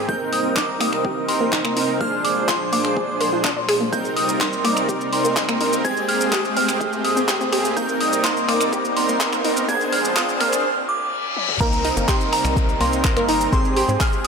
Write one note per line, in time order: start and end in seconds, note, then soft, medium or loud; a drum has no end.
0.00 1.97 A#3 medium
0.00 riser medium
0.09 1.99 C3 medium
0.09 1.99 G3 medium
0.09 0.13 A#3 medium
0.09 1.26 C4 medium
0.09 1.26 D#4 medium
0.09 1.99 D#4 medium
0.09 1.26 A#4 loud
0.09 1.99 D#5 medium
0.09 0.33 G6 loud
0.09 kick loud
0.33 0.57 D#6 medium
0.33 0.57 D#6 loud
0.33 open hi-hat loud
0.56 0.64 D#4 medium
0.56 0.81 D6 medium
0.56 0.81 D6 loud
0.56 kick loud
0.56 clap loud
0.81 0.88 A#3 medium
0.81 1.30 D#6 loud
0.81 finger snap medium
0.81 open hi-hat loud
0.93 finger snap medium
1.05 1.09 G4 medium
1.05 kick loud
1.29 1.74 C4 loud
1.29 1.74 D#4 medium
1.29 1.74 A#4 loud
1.29 1.73 C6 medium
1.29 open hi-hat loud
1.41 1.45 A#3 medium
1.52 1.57 D#4 loud
1.52 kick loud
1.52 clap loud
1.65 1.69 A#3 medium
1.65 finger snap medium
1.77 1.98 C4 loud
1.77 1.98 D#4 medium
1.77 1.84 D#4 medium
1.77 1.98 A#4 loud
1.77 open hi-hat loud
2.00 3.91 A#2 medium
2.00 3.91 F3 medium
2.00 3.91 G#3 medium
2.00 2.05 A#3 medium
2.00 3.91 D4 medium
2.00 3.42 D4 medium
2.00 3.42 G#4 medium
2.00 3.91 C5 medium
2.00 3.42 C5 loud
2.00 2.25 F6 loud
2.00 kick loud
2.25 2.49 D6 loud
2.25 2.49 D6 medium
2.25 open hi-hat loud
2.48 2.56 F4 medium
2.48 2.73 C6 medium
2.48 kick loud
2.48 clap loud
2.73 2.80 A#3 medium
2.73 3.22 D6 loud
2.73 open hi-hat medium
2.85 finger snap medium
2.97 3.01 G#4 medium
2.97 kick loud
3.20 3.25 A#4 medium
3.20 3.65 C6 medium
3.20 open hi-hat loud
3.33 3.35 F4 medium
3.44 3.49 D4 loud
3.44 kick loud
3.44 clap loud
3.57 3.61 D5 medium
3.69 3.71 G#4 loud
3.69 finger snap medium
3.69 open hi-hat loud
3.81 3.85 A#3 medium
3.92 5.83 C3 medium
3.92 5.83 G3 medium
3.92 9.65 A#3 medium
3.92 3.97 A#3 medium
3.92 5.10 C4 medium
3.92 5.83 D#4 medium
3.92 5.10 D#4 medium
3.92 5.10 A#4 loud
3.92 5.83 D5 medium
3.92 4.15 G6 loud
3.92 4.03 G6 loud
3.92 kick loud
3.92 shaker medium
4.05 shaker soft
4.16 4.41 D#6 loud
4.16 open hi-hat loud
4.29 shaker medium
4.40 4.48 D#4 medium
4.40 4.63 C6 medium
4.40 kick loud
4.40 clap loud
4.40 shaker medium
4.53 shaker soft
4.65 4.72 A#3 medium
4.65 5.14 D6 loud
4.65 finger snap medium
4.65 open hi-hat medium
4.77 finger snap medium
4.77 shaker medium
4.89 4.93 G4 medium
4.89 kick loud
4.89 shaker medium
5.01 shaker soft
5.13 5.58 C4 loud
5.13 5.58 D#4 medium
5.13 5.58 A#4 loud
5.13 5.57 C6 medium
5.13 open hi-hat loud
5.25 5.29 A#3 medium
5.25 shaker medium
5.36 5.41 D#4 loud
5.36 kick loud
5.36 clap loud
5.36 shaker medium
5.49 5.53 A#3 medium
5.49 finger snap medium
5.49 shaker soft
5.61 5.82 C4 loud
5.61 5.68 D#4 medium
5.61 5.82 D#4 medium
5.61 5.82 A#4 loud
5.61 open hi-hat medium
5.73 shaker medium
5.84 7.75 G#2 medium
5.84 7.75 G#3 medium
5.84 5.89 C4 medium
5.84 7.26 C4 medium
5.84 7.26 G4 medium
5.84 7.26 G#4 loud
5.84 7.75 C5 medium
5.84 7.75 G5 medium
5.84 6.09 G#6 loud
5.84 kick loud
5.84 shaker medium
5.97 shaker soft
6.09 6.33 F6 loud
6.09 6.33 F6 medium
6.09 open hi-hat loud
6.21 shaker medium
6.32 6.40 G4 medium
6.32 6.57 D#6 medium
6.32 kick loud
6.32 clap loud
6.32 shaker medium
6.45 shaker soft
6.56 6.64 C4 medium
6.56 7.06 F6 loud
6.56 open hi-hat medium
6.69 finger snap medium
6.69 shaker medium
6.81 6.85 G#4 medium
6.81 kick loud
6.81 shaker medium
6.93 shaker soft
7.04 7.49 D#6 medium
7.04 open hi-hat loud
7.17 7.21 C4 medium
7.17 shaker medium
7.28 7.50 C4 medium
7.28 7.50 G4 medium
7.28 7.33 G4 loud
7.28 7.50 G#4 medium
7.28 kick loud
7.28 clap loud
7.28 shaker medium
7.41 7.45 C4 medium
7.41 shaker soft
7.52 7.74 C4 medium
7.52 7.60 G4 medium
7.52 7.74 G4 medium
7.52 7.74 G#4 loud
7.52 finger snap medium
7.52 open hi-hat medium
7.65 shaker medium
7.76 9.67 C3 medium
7.76 9.67 G3 medium
7.76 7.81 A#3 medium
7.76 8.94 C4 medium
7.76 9.67 D#4 medium
7.76 8.94 D#4 medium
7.76 8.94 A#4 medium
7.76 9.67 D5 medium
7.76 8.01 G6 loud
7.76 kick loud
7.76 shaker medium
7.89 shaker soft
8.01 8.25 D#6 loud
8.01 open hi-hat loud
8.13 shaker medium
8.24 8.32 D#4 medium
8.24 8.49 C6 medium
8.24 kick loud
8.24 clap loud
8.24 shaker medium
8.37 shaker soft
8.49 8.56 A#3 medium
8.49 8.98 D6 loud
8.49 finger snap medium
8.49 open hi-hat medium
8.61 finger snap medium
8.61 shaker medium
8.73 8.77 G4 medium
8.73 kick loud
8.73 shaker medium
8.85 shaker soft
8.97 9.42 C4 loud
8.97 9.42 D#4 medium
8.97 9.42 A#4 loud
8.97 9.41 C6 medium
8.97 open hi-hat loud
9.09 9.13 A#3 medium
9.09 shaker medium
9.20 9.25 D#4 loud
9.20 kick loud
9.20 clap loud
9.20 shaker medium
9.33 9.37 A#3 medium
9.33 finger snap medium
9.33 shaker soft
9.44 9.66 C4 loud
9.44 9.66 D#4 medium
9.44 9.52 D#4 medium
9.44 9.66 A#4 loud
9.44 open hi-hat medium
9.57 shaker medium
9.68 10.64 A#2 medium
9.68 10.64 F3 medium
9.68 10.64 G#3 medium
9.68 9.73 A#3 medium
9.68 10.65 D4 medium
9.68 10.64 D4 medium
9.68 10.65 G#4 medium
9.68 10.64 C5 medium
9.68 10.65 C5 loud
9.68 9.93 G#6 loud
9.68 kick loud
9.68 shaker medium
9.81 shaker soft
9.92 10.15 F6 loud
9.92 10.03 F6 loud
9.92 open hi-hat loud
10.05 shaker medium
10.16 10.24 F4 medium
10.16 10.39 D#6 loud
10.16 kick loud
10.16 clap loud
10.16 shaker medium
10.29 shaker soft
10.41 10.48 A#3 medium
10.41 10.65 F6 loud
10.41 10.90 F6 loud
10.41 finger snap medium
10.41 open hi-hat medium
10.53 finger snap medium
10.53 shaker medium
10.65 reverse cymbal medium
10.89 11.33 D6 medium
11.37 high tom medium
11.49 mid tom medium
11.60 11.92 C2 loud
11.60 13.51 C3 medium
11.60 13.51 G3 medium
11.60 13.51 A#3 medium
11.60 11.65 A#3 loud
11.60 12.78 C4 medium
11.60 12.78 D#4 medium
11.60 13.51 D#4 medium
11.60 12.78 A#4 medium
11.60 11.65 A#4 medium
11.60 13.51 D5 medium
11.60 12.10 A#5 loud
11.60 kick loud
11.60 crash loud
11.60 downlifter medium
11.60 shaker medium
11.73 shaker soft
11.85 11.89 D#4 medium
11.85 11.89 D#5 medium
11.85 open hi-hat loud
11.97 12.06 G1 medium
11.97 12.04 A#3 medium
11.97 12.04 A#4 medium
11.97 shaker medium
12.08 12.11 G4 medium
12.08 12.11 G5 medium
12.08 12.33 C6 loud
12.08 kick loud
12.08 clap loud
12.08 shaker medium
12.21 shaker soft
12.33 12.82 A#5 loud
12.33 finger snap medium
12.33 open hi-hat medium
12.45 12.76 C2 medium
12.45 finger snap medium
12.45 shaker medium
12.57 kick loud
12.57 shaker medium
12.69 shaker soft
12.81 13.12 C2 medium
12.81 12.83 A#3 loud
12.81 13.26 C4 loud
12.81 13.26 D#4 medium
12.81 13.26 A#4 loud
12.81 12.83 A#4 medium
12.81 13.30 C6 loud
12.81 open hi-hat loud
12.93 shaker medium
13.04 13.07 A#4 medium
13.04 13.07 A#5 medium
13.04 kick loud
13.04 clap loud
13.04 shaker medium
13.17 13.48 G1 medium
13.17 13.21 A#3 loud
13.17 13.21 A#4 medium
13.17 finger snap medium
13.17 shaker soft
13.28 13.50 C4 loud
13.28 13.50 D#4 medium
13.28 13.36 D#4 medium
13.28 13.50 A#4 loud
13.28 13.36 D#5 medium
13.28 13.53 A#5 loud
13.28 open hi-hat loud
13.41 shaker medium
13.52 13.84 G#1 loud
13.52 14.27 G#3 medium
13.52 14.27 C4 medium
13.52 13.57 C4 loud
13.52 14.27 G4 medium
13.52 14.27 G#4 loud
13.52 13.57 C5 medium
13.52 14.27 G5 medium
13.52 13.75 C6 loud
13.52 13.76 C6 loud
13.52 kick loud
13.52 shaker medium
13.65 shaker soft
13.77 13.81 G4 medium
13.77 13.81 G5 medium
13.77 14.01 C6 loud
13.77 open hi-hat loud
13.89 13.98 G#2 medium
13.89 13.96 C4 medium
13.89 13.96 C5 medium
13.89 shaker medium
14.00 14.03 G#4 medium
14.00 14.03 G#5 medium
14.00 14.25 F6 loud
14.00 kick loud
14.00 clap loud
14.00 shaker medium
14.13 shaker soft